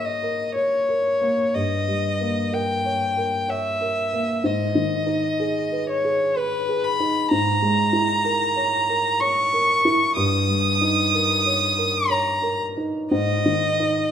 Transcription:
Already playing: G#2 G#3 A#3 A#4 C#5
0.05 D#5
0.23 A#4
0.55 C#5
0.89 A#4
1.21 A#3
1.55 G2 D#5
1.88 G3
2.21 A#3
2.53 A#4 G5
2.85 C#5
3.17 A#4
3.48 C#5 E5
3.81 A#4
4.13 A#3
4.44 G#2 D#5
4.75 D#3
5.07 D#4
5.40 G#4
5.72 B4
5.89 C#5
6.04 G#4
6.36 B4
6.69 G#4
6.84 B5
7.00 D#4
7.31 G#2 A#5
7.62 G#3
7.93 E4
8.25 A#4
8.56 C#5
8.89 A#4
9.20 C#5 C#6
9.53 A#4
9.85 E4
10.16 G2 D#6
10.48 G3
10.81 D#4
11.14 A#4
11.46 C#5
11.78 A#4
12.10 C#5 A#5
12.42 A#4
12.77 D#4
13.11 G#2 D#5
13.46 D#3
13.80 D#4

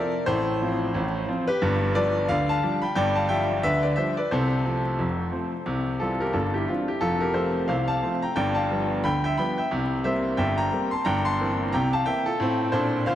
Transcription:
Already playing: F3 C4 A4 A#4 D5
0.26 A1 A2 A4 C5
0.61 F3 C4 F4
0.94 A1 A2
1.28 F3 C4 F4
1.48 G4 B4
1.62 G1 G2
1.95 F3 G3 D4 B4 D5
2.29 D2 D3 D5 F5
2.49 F5 A5
2.63 F3 G3 D4
2.82 G5 B5
2.95 G1 G2 D5 G5
3.15 F5 A5
3.29 F3 G3 D4 E5 G5
3.63 D2 D3 B4 E5
3.83 B4 D5
3.96 F3 G3 D4 C5 E5
4.17 B4 D5
4.31 C2 C3 A4 C5
4.65 F3 A3 C4
4.98 F1 F2
5.32 F3 A3 C4
5.66 C2 C3
6.00 E3 G3 C4 F4 A4
6.20 G4 A#4
6.33 G1 G2 F4 A4
6.54 E4 G4
6.68 E3 G3 C4 D4 F4
6.88 E4 G4
7.01 F1 F2 F4 A4
7.20 G4 A#4
7.34 F3 A3 C4 A4 C5
7.68 C2 C3 C5 F5
7.88 F5 A5
8.02 F3 A3 C4
8.22 G5 A#5
8.36 G1 G2 D5 G5
8.55 F5 A5
8.71 F3 G3 B3
9.04 D2 D3 G5 B5
9.24 E5 G5
9.38 F3 G3 B3 G5 B5
9.58 E5 G5
9.71 C2 C3
10.04 G3 A#3 C4 C5 E5
10.37 G1 G2 E5 G5
10.58 G5 A#5
10.73 G3 A#3 C4
10.91 A5 C6
11.05 G1 G2 G5 A#5
11.25 A5 C6
11.40 E3 A#3 C4
11.73 C2 C3 G5 A#5
11.93 F5 A5
12.06 E3 A#3 C4 E5 G5
12.26 F4 A4
12.40 A2 C4
12.72 A#2 D4 A4 C5
13.06 D3 F4 C5 F5

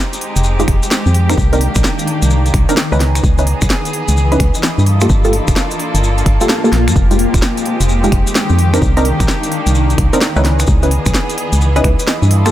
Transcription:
Already playing: D#3 G#3 C4 D#4 G4 G5
0.13 closed hi-hat, maracas
0.21 open hi-hat
0.36 F1, closed hi-hat, maracas
0.44 maracas
0.60 G#3 D#4 F4 G4, closed hi-hat, maracas
0.68 F1, finger snap, kick, open hi-hat
0.83 closed hi-hat, maracas
0.91 snare, maracas
1.06 F2, maracas
1.14 open hi-hat
1.29 C4 D4 D#4 A#4, finger snap, closed hi-hat, maracas
1.38 C2 A#3 D4, kick, maracas
1.53 C4 D4 D#4 A#4, closed hi-hat, maracas
1.61 open hi-hat
1.70 D5
1.75 A#1, finger snap, kick, closed hi-hat, maracas
1.84 snare, maracas
1.97 A#5, closed hi-hat, maracas
2.07 open hi-hat
2.22 C2, closed hi-hat, maracas
2.30 maracas
2.46 closed hi-hat, maracas
2.54 C2, finger snap, kick, open hi-hat
2.69 C4 D4 D#4 A#4, closed hi-hat, maracas
2.77 snare, maracas
2.92 C#2 C#4 D#4 E4 B4, maracas
3.00 E3 B3 G#4, snare, open hi-hat
3.15 finger snap, closed hi-hat, maracas
3.24 C#2, kick, maracas
3.36 C#4 D#4 E4 B4 D#5, closed hi-hat, maracas
3.47 open hi-hat
3.62 B1 B5, finger snap, kick, closed hi-hat, maracas
3.70 snare, maracas
3.85 closed hi-hat, maracas
3.93 open hi-hat
4.08 C#2, closed hi-hat, maracas
4.17 maracas
4.32 C#4 D#4 E4 B4, closed hi-hat, maracas
4.40 C#2, finger snap, kick, open hi-hat
4.54 closed hi-hat, maracas
4.63 snare, maracas
4.78 G2, maracas
4.86 A#3 D4 F4 A4, open hi-hat
4.96 A#3
5.01 A#3 F4 G4 A4 A5, finger snap, closed hi-hat, maracas
5.10 G1, kick, maracas
5.24 A#3 F4 G4 A4, closed hi-hat, maracas
5.33 open hi-hat
5.47 F1, finger snap, kick, closed hi-hat, maracas
5.56 snare, maracas
5.71 closed hi-hat, maracas
5.79 open hi-hat
5.95 G1, closed hi-hat, maracas
6.04 maracas
6.18 closed hi-hat, maracas
6.26 G1, finger snap, kick, open hi-hat
6.41 A#3 F4 G4 A4, closed hi-hat, maracas
6.49 snare, maracas
6.64 A#3 F4 G4 A4, maracas
6.73 A#1, snare, open hi-hat
6.88 G2, finger snap, closed hi-hat, maracas
6.96 F1 D#3 G#3 C4 G4, kick, maracas
7.04 G#3
7.11 G#3 D#4 F4 G4, closed hi-hat, maracas
7.17 G5, open hi-hat
7.34 D#1, finger snap, kick, closed hi-hat, maracas
7.42 snare, maracas
7.57 closed hi-hat, maracas
7.66 open hi-hat
7.81 F1, closed hi-hat, maracas
7.89 maracas
8.04 G#3 D#4 F4 G4, closed hi-hat, maracas
8.12 F1, finger snap, kick, open hi-hat
8.27 closed hi-hat, maracas
8.35 snare, maracas
8.49 F2, maracas
8.59 open hi-hat
8.74 C4 D4 D#4 A#4, finger snap, closed hi-hat, maracas
8.82 C2 A#3 D4, kick, maracas
8.97 C4 D4 D#4 A#4, closed hi-hat, maracas
9.05 open hi-hat
9.14 A#5
9.19 A#1 D5, finger snap, kick, closed hi-hat, maracas
9.28 snare, maracas
9.43 closed hi-hat, maracas
9.52 open hi-hat
9.67 C2, closed hi-hat, maracas
9.75 maracas
9.90 closed hi-hat, maracas
9.98 C2, finger snap, kick, open hi-hat
10.13 C4 D4 D#4 A#4, closed hi-hat, maracas
10.21 snare, maracas
10.36 C#2 C#4 D#4 E4 B4, maracas
10.45 E3 B3 G#4, snare, open hi-hat
10.59 finger snap, closed hi-hat, maracas
10.64 C#2 B5, kick, maracas
10.81 C#4 D#4 E4 B4 D#5, closed hi-hat, maracas
10.91 open hi-hat
11.06 B1, finger snap, kick, closed hi-hat, maracas
11.14 snare, maracas
11.30 closed hi-hat, maracas
11.38 open hi-hat
11.53 C#2, closed hi-hat, maracas
11.61 maracas
11.76 C#4 D#4 E4 B4, closed hi-hat, maracas
11.84 C#2, finger snap, kick, open hi-hat
11.99 closed hi-hat, maracas
12.08 snare, maracas
12.22 G2, maracas
12.30 A#3 D4 F4 A4, open hi-hat
12.40 A#3
12.46 A#3 F4 G4 A4, finger snap, closed hi-hat, maracas

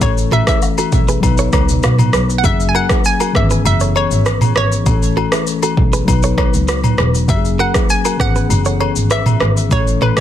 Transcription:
0.00 A1 E3 A3 C#4 C#5, kick, high agogo, shaker
0.04 A4
0.18 shaker
0.31 F#4 A4 E5, mid tom, high agogo
0.47 E4 G#4 E5, kick, cross-stick, shaker
0.62 low woodblock, shaker
0.78 F#4 A4, high agogo, shaker
0.92 B1, kick, shaker
1.08 G#4 B4, shaker
1.20 B1 F#3 B3 D#4, kick, high agogo, shaker
1.25 B4
1.38 A4 C#5, shaker
1.53 C#2 A4 C#5, kick, cross-stick, high agogo, shaker
1.69 B1, shaker
1.83 B2 F#4 B4, cross-stick, low woodblock, shaker
1.99 mid tom, high agogo, shaker
2.13 B1 G#4 B4, cross-stick, shaker
2.30 shaker
2.38 F#5
2.43 F#1 F#3 A#3 C#4 G#4 E5, kick, high agogo, shaker
2.60 shaker
2.69 G#5
2.75 F#4 A#4 F#5, high agogo
2.89 E4 G#4, kick, cross-stick, shaker
3.04 G#5, shaker
3.20 F#4 A#4, high agogo, shaker
3.33 G#1 E3 B3 C#4 E5, kick, cross-stick
3.38 G#4
3.51 G#4 B4, shaker
3.65 F#1 E5, high agogo, shaker
3.80 A4 C#5, shaker
3.96 A4 C#5, high agogo
4.11 G#1, shaker
4.26 G#4 B4, cross-stick, shaker
4.41 mid tom, high agogo, shaker
4.56 G#1 G#4 B4 C#5, cross-stick
4.72 shaker
4.84 A1 E3 A3 C#4, kick, high agogo, shaker
4.89 A4
5.03 shaker
5.17 F#4 A4, high agogo
5.32 E4 G#4, cross-stick, shaker
5.47 shaker
5.63 F#4 A4, high agogo, shaker
5.77 B1, kick
5.93 G#4 B4, shaker
6.05 B1 F#3 B3 D#4, kick, high agogo, shaker
6.10 B4
6.23 A4 C#5, shaker
6.38 A4 C#5, kick, cross-stick, high agogo
6.54 C#2, shaker
6.68 F#4 B4, cross-stick, shaker
6.84 mid tom, high agogo, shaker
6.98 E1 G#4 B4, cross-stick
7.15 shaker
7.28 F#1 F#3 A#3 C#4 G4 E5, kick, high agogo, shaker
7.37 G#4
7.45 shaker
7.59 F#4 A#4 F#5, high agogo
7.74 E4 G#4, kick, cross-stick, shaker
7.89 G#5, shaker
8.05 F#4 A#4, high agogo, shaker
8.17 G#1 E3 B3 C#4 F#5, kick, cross-stick
8.22 G#4
8.36 G#4 B4, shaker
8.50 F#1, high agogo, shaker
8.65 A4 C#5, shaker
8.80 A4 C#5, high agogo
8.96 G#1, shaker
9.11 G#4 B4 E5, cross-stick, shaker
9.26 mid tom, high agogo, shaker
9.40 G#1 G#4 B4, cross-stick
9.57 shaker
9.69 A1 E3 A3 C#4 C#5, kick, high agogo, shaker
9.74 G#4
9.80 A4
9.87 shaker
10.01 A4 B4 C#5, mid tom, high agogo
10.17 cross-stick, shaker

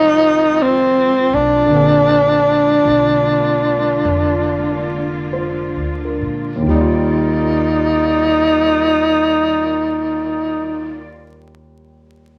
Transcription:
Already playing: C2 D#3 F3 G#3 C4 D#4 F4
0.62 C4
1.33 B1 D4
1.66 D3
1.70 A#1 D3 A#3 C4 F4
1.77 G#4
2.85 B1
4.05 F1 D4
4.72 D5
5.33 C5
5.76 D2
6.05 A#4
6.21 A#2
6.56 D#2
6.62 D#2 D#3 A#3
6.66 G3 D#4 F4 D5
6.75 D5
6.81 F4

